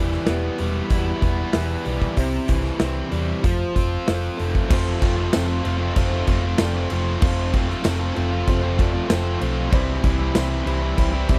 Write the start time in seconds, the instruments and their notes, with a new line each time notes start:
Already playing: picked electric bass E1, steel-string acoustic guitar E3 G3 B3 E4, overdriven electric guitar E3 G3, grand piano E4 G4 B4
0.12 snare
0.26 picked electric bass E1, steel-string acoustic guitar E3 G3 B3 E4, grand piano E4 G4 B4, snare, open hi-hat
0.58 picked electric bass E1, steel-string acoustic guitar E3 G3 B3 E4, open hi-hat
0.90 picked electric bass E1, steel-string acoustic guitar E2 B2 E3 G3 B3 E4, grand piano E4 G4 B4, kick, open hi-hat
1.22 picked electric bass E1, steel-string acoustic guitar E3 G3 B3 E4, kick, open hi-hat
1.53 picked electric bass E1, steel-string acoustic guitar E3 G3 B3 E4, grand piano E4 G4 B4, snare, open hi-hat
1.85 picked electric bass B1, steel-string acoustic guitar E3 G3 B3 E4, open hi-hat
2.02 kick
2.17 picked electric bass C2, steel-string acoustic guitar C3 E3 G3 C4 E4, grand piano E4 G4 C5, kick, open hi-hat
2.48 picked electric bass C2, overdriven electric guitar E3, steel-string acoustic guitar G3 C4 E4, kick, open hi-hat
2.64 snare
2.79 picked electric bass C2, steel-string acoustic guitar E3 G3 C4 E4, grand piano E4 G4 C5, snare, open hi-hat
3.11 picked electric bass E2, steel-string acoustic guitar G3 C4 E4, open hi-hat
3.43 picked electric bass F1, steel-string acoustic guitar F2 C3 F3 A3 C4 F4, grand piano F4 A4 C5, kick, open hi-hat
3.74 picked electric bass F1, steel-string acoustic guitar F3 A3 C4 F4, kick, open hi-hat
4.06 picked electric bass F1, steel-string acoustic guitar F3 A3 C4 F4, grand piano F4 A4 C5, snare, open hi-hat
4.36 picked electric bass F1, steel-string acoustic guitar F3 A3 C4 F4, open hi-hat
4.55 kick
4.68 picked electric bass F1, steel-string acoustic guitar F2 C3 F3 A3 C4 F4, grand piano C4 F4 A4, kick, crash
4.72 grand piano C5
5.01 picked electric bass F1, steel-string acoustic guitar F3 A3 C4 F4, kick, crash
5.16 overdriven electric guitar A3 C4 F4
5.33 picked electric bass F1, steel-string acoustic guitar F3 A3 C4 F4, grand piano C4 F4 A4 C5, snare, tambourine, crash
5.46 overdriven electric guitar A3 C4 F4
5.62 picked electric bass F1, overdriven electric guitar F3, steel-string acoustic guitar C4 F4, crash
5.66 steel-string acoustic guitar F3 A3
5.77 overdriven electric guitar A3 C4 F4
5.96 picked electric bass F1, steel-string acoustic guitar F2 C3 F3 A3 C4 F4, grand piano C4 F4 A4 C5, kick, crash
6.10 overdriven electric guitar A3 C4 F4
6.26 picked electric bass F1, overdriven electric guitar F3, steel-string acoustic guitar A3 C4 F4, grand piano C4 F4 A4 C5, kick, crash
6.31 steel-string acoustic guitar F3
6.43 overdriven electric guitar A3 C4 F4
6.58 picked electric bass F1, steel-string acoustic guitar F3 A3 C4 F4, grand piano C4 F4 A4 D5, snare, tambourine, crash
6.76 overdriven electric guitar A3 C4 F4
6.90 picked electric bass F1, overdriven electric guitar F3, steel-string acoustic guitar A3 C4 F4, crash
6.94 steel-string acoustic guitar F3
7.22 picked electric bass F1, steel-string acoustic guitar F2 C3 F3 A3 C4 F4, grand piano C4 F4 A4 C5, kick, crash
7.53 steel-string acoustic guitar F3 A3 C4 F4, kick, crash
7.68 overdriven electric guitar A3 C4 F4, snare
7.84 picked electric bass F1, steel-string acoustic guitar F3 A3 C4 F4, grand piano C4 F4 A4 C5, snare, tambourine, crash
8.00 overdriven electric guitar A3 C4 F4
8.14 picked electric bass F1, overdriven electric guitar F3, steel-string acoustic guitar C4 F4, crash
8.18 steel-string acoustic guitar F3 A3
8.31 overdriven electric guitar A3 C4 F4
8.47 picked electric bass F1, steel-string acoustic guitar F2 C3 F3 A3 C4 F4, grand piano C4 F4 A4 C5, kick, crash
8.62 overdriven electric guitar A3 C4 F4
8.77 overdriven electric guitar F3, steel-string acoustic guitar A3 C4 F4, grand piano C4 F4 A4 D5, kick, crash
8.81 steel-string acoustic guitar F3
8.93 overdriven electric guitar A3 C4 F4
9.09 picked electric bass F1, steel-string acoustic guitar F3 A3 C4 F4, grand piano C4 F4 A4 C5, snare, tambourine, crash
9.23 overdriven electric guitar A3 C4 F4
9.38 picked electric bass B1, overdriven electric guitar F3 A3, steel-string acoustic guitar C4 F4, crash
9.43 steel-string acoustic guitar F3 A3
9.71 picked electric bass C2, steel-string acoustic guitar C3 E3 G3 C4 E4, grand piano C4 E4 G4 C5, kick, crash
10.02 picked electric bass C2, overdriven electric guitar E3, steel-string acoustic guitar G3 C4 E4, kick, crash
10.19 overdriven electric guitar G3 C4 E4
10.34 picked electric bass C2, overdriven electric guitar C3, steel-string acoustic guitar E3 G3 C4 E4, grand piano C4 E4 G4 C5, snare, tambourine, crash
10.49 overdriven electric guitar G3 C4 E4
10.65 picked electric bass C2, overdriven electric guitar E3, steel-string acoustic guitar G3 C4 E4, crash
10.82 overdriven electric guitar G3 C4 E4
10.96 picked electric bass C2, steel-string acoustic guitar C3 E3 G3 C4 E4, grand piano C4 E4 G4 C5, kick, crash
11.13 overdriven electric guitar G3 C4 E4
11.28 picked electric bass C2, overdriven electric guitar E3, steel-string acoustic guitar G3 C4 E4, grand piano C4 E4 G4 C5, kick, crash